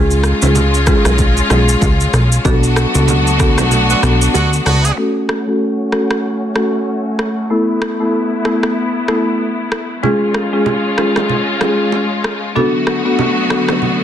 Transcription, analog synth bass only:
0.00 0.33 C#2 loud
0.42 0.94 C#2 medium
1.05 1.42 B1 medium
1.50 1.76 B1 medium
1.82 2.08 C#2 medium
2.13 2.39 B1 medium
2.45 2.86 B1 loud
2.95 3.60 C#2 loud
3.58 3.95 B1 medium
4.03 4.29 B1 medium
4.35 4.61 D2 medium
4.66 4.92 C#2 medium

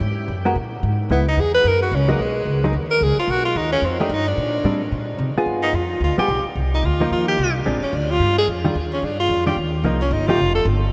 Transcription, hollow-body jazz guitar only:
0.45 0.55 G#3 medium
0.45 0.55 B3 medium
0.45 0.55 F#4 medium
0.45 0.56 A#4 medium
1.11 1.26 G#3 medium
1.11 1.26 B3 medium
1.11 1.26 E4 medium
2.08 2.18 F#3 medium
2.08 2.19 G#3 medium
2.08 2.19 D#4 medium
2.64 2.73 F#3 medium
2.64 2.74 G#3 medium
2.64 2.74 D#4 medium
4.00 4.10 F3 medium
4.00 4.10 A3 medium
4.00 4.10 D#4 medium
4.00 4.10 G4 medium
4.65 4.80 G3 medium
4.65 4.80 C4 medium
4.65 4.81 D4 medium
5.38 5.73 B3 medium
5.38 5.73 F4 medium
5.38 5.73 G#4 medium
6.18 6.28 G3 medium
6.18 6.28 B3 medium
6.18 6.28 F4 medium
6.18 6.29 G#4 medium
7.00 7.36 F3 medium
7.00 7.37 A#3 medium
7.00 7.37 D#4 medium
7.66 7.81 G#3 medium
7.66 7.81 C4 medium
7.66 7.81 D4 medium
8.64 8.74 D#3 medium
8.64 8.74 G3 medium
8.64 8.75 D4 medium
8.64 8.75 F4 medium
9.46 9.56 D#3 medium
9.46 9.56 G3 medium
9.46 9.57 D4 medium
9.46 9.57 F4 medium
9.84 10.00 F3 medium
9.84 10.00 A#3 medium
9.84 10.00 D#4 medium
10.28 10.38 F3 medium
10.28 10.38 A3 medium
10.28 10.39 D#4 medium
10.28 10.39 G4 medium

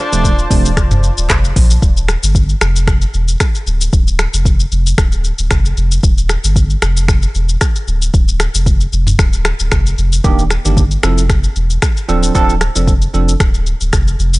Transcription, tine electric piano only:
0.12 0.29 C3 medium
0.12 0.29 F3 medium
0.12 0.29 A3 medium
0.12 0.29 D4 medium
0.50 0.69 C3 medium
0.50 0.69 F3 medium
0.50 0.69 A3 medium
0.50 0.69 D4 medium
10.24 10.43 D#3 medium
10.24 10.43 A#3 medium
10.24 10.43 D4 medium
10.24 10.43 G4 loud
10.65 10.82 D#3 medium
10.65 10.82 A#3 medium
10.65 10.82 D4 medium
10.65 10.82 G4 medium
11.03 11.22 F3 medium
11.03 11.22 C4 medium
11.03 11.22 E4 medium
11.03 11.22 A4 medium
12.08 12.33 F3 medium
12.08 12.33 C4 medium
12.08 12.33 D4 medium
12.08 12.33 A4 loud
12.35 12.53 F3 medium
12.35 12.53 C4 medium
12.35 12.53 D4 medium
12.35 12.53 A4 loud
12.75 12.92 F3 medium
12.75 12.92 C4 medium
12.75 12.92 D4 medium
12.75 12.93 A4 medium
13.14 13.32 F3 medium
13.14 13.32 C4 medium
13.14 13.32 D4 medium
13.14 13.32 A4 medium

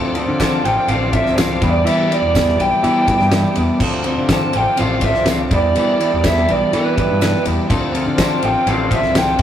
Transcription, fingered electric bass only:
0.00 0.24 D2 medium
0.28 0.60 D3 medium
0.64 0.75 A1 loud
0.88 1.21 A1 loud
1.25 1.58 C2 medium
1.62 1.84 E2 loud
1.84 2.18 E3 loud
2.22 2.55 E2 medium
2.58 2.69 B1 medium
2.83 3.16 E3 loud
3.20 3.42 G2 medium
3.57 3.67 E2 medium
3.81 4.13 D2 loud
4.18 4.50 D3 medium
4.54 4.65 A1 medium
4.79 5.12 A1 loud
5.15 5.48 C2 medium
5.51 5.73 E2 loud
5.77 6.09 E3 loud
6.13 6.45 E2 medium
6.50 6.60 B1 loud
6.73 7.06 E3 loud
7.10 7.32 G2 medium
7.47 7.57 E2 loud
7.70 8.03 D2 medium
8.06 8.39 D3 medium
8.43 8.53 A1 loud
8.66 8.99 A1 loud
9.03 9.36 C2 medium
9.39 9.42 E2 loud

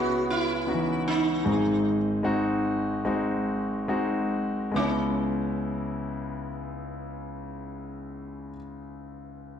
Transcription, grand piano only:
0.00 1.41 C#2 medium
0.00 1.42 C#3 medium
0.00 0.67 B3 medium
0.00 0.67 C#4 medium
0.00 1.47 E4 medium
0.00 1.47 G#4 medium
0.00 0.64 B4 medium
0.67 1.41 B3 medium
0.67 1.41 C#4 medium
0.67 0.74 D#4 soft
0.67 1.42 F#4 medium
0.74 1.45 E3 medium
1.45 4.72 G#1 medium
1.45 4.71 G#2 medium
1.45 2.20 G#3 medium
1.45 2.21 C4 medium
1.45 2.21 D#4 medium
1.45 1.52 F#4 medium
1.53 2.25 G#4 medium
2.23 3.01 G#3 medium
2.23 3.02 C4 medium
2.23 3.02 D#4 medium
2.23 3.02 F#4 medium
3.05 3.85 G#3 medium
3.05 3.85 C4 medium
3.05 3.85 D#4 medium
3.05 3.85 F#4 medium
3.88 4.70 G#3 medium
3.88 4.71 C4 medium
3.88 4.71 D#4 medium
3.88 4.71 F#4 medium
4.72 8.53 C#2 medium
4.72 8.50 G#3 medium
4.72 8.52 B3 medium
4.76 8.54 C#4 medium
4.76 8.56 E4 medium

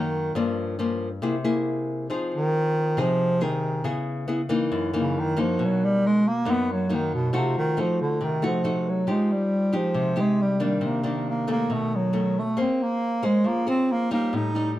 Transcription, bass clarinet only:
0.00 0.37 D#3 medium
2.35 3.02 D#3 loud
3.01 3.45 F3 loud
3.44 3.86 D#3 medium
4.96 5.21 C#3 medium
5.20 5.42 D#3 medium
5.41 5.66 F3 medium
5.64 5.86 F#3 medium
5.85 6.08 G3 loud
6.06 6.29 G#3 loud
6.28 6.52 A#3 medium
6.51 6.70 B3 loud
6.72 6.96 F#3 medium
6.95 7.13 D#3 medium
7.14 7.39 B2 medium
7.38 7.57 C3 medium
7.58 7.83 D#3 medium
7.81 8.01 F3 medium
8.02 8.26 D3 medium
8.24 8.44 D#3 medium
8.46 8.91 F3 medium
8.89 9.12 F#3 medium
9.11 9.34 G#3 medium
9.32 9.77 G3 medium
9.76 10.21 F3 medium
10.20 10.43 G#3 medium
10.42 10.62 G3 medium
10.64 10.88 G3 medium
10.86 11.28 A#3 medium
11.30 11.48 A#3 medium
11.51 11.74 A#3 medium
11.73 11.97 A3 medium
11.95 12.41 F#3 medium
12.39 12.59 A3 medium
12.61 12.85 C4 medium
12.83 13.27 A#3 loud
13.25 13.49 G#3 medium
13.47 13.68 A#3 loud
13.69 13.94 C4 medium
13.92 14.12 A#3 medium
14.13 14.37 A#3 medium
14.36 14.73 D#4 medium

